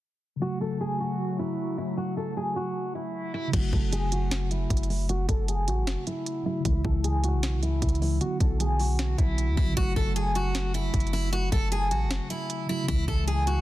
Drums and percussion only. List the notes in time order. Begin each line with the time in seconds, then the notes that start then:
3.53 kick, closed hi-hat, crash
3.73 kick
3.93 closed hi-hat
4.12 closed hi-hat
4.31 snare, closed hi-hat
4.51 closed hi-hat
4.70 kick, closed hi-hat
4.77 closed hi-hat
4.83 closed hi-hat
4.90 open hi-hat
5.09 closed hi-hat
5.29 kick, closed hi-hat
5.48 closed hi-hat
5.68 closed hi-hat
5.87 snare, closed hi-hat
6.07 closed hi-hat
6.26 closed hi-hat
6.65 kick, closed hi-hat
6.85 kick
7.04 closed hi-hat
7.24 closed hi-hat
7.43 snare, closed hi-hat
7.63 closed hi-hat
7.82 kick, closed hi-hat
7.89 closed hi-hat
7.95 closed hi-hat
8.02 open hi-hat
8.21 closed hi-hat
8.40 kick, closed hi-hat
8.60 closed hi-hat
8.79 open hi-hat
8.99 snare, closed hi-hat
9.18 kick, closed hi-hat
9.38 closed hi-hat
9.57 kick
9.77 kick, closed hi-hat
9.96 kick
10.16 closed hi-hat
10.35 closed hi-hat
10.55 snare, closed hi-hat
10.74 closed hi-hat
10.94 kick, closed hi-hat
11.00 closed hi-hat
11.07 closed hi-hat
11.14 open hi-hat
11.33 closed hi-hat
11.52 kick, closed hi-hat
11.72 closed hi-hat
11.91 closed hi-hat
12.11 snare, closed hi-hat
12.30 closed hi-hat
12.50 closed hi-hat
12.88 kick, closed hi-hat
13.08 kick
13.28 closed hi-hat
13.47 closed hi-hat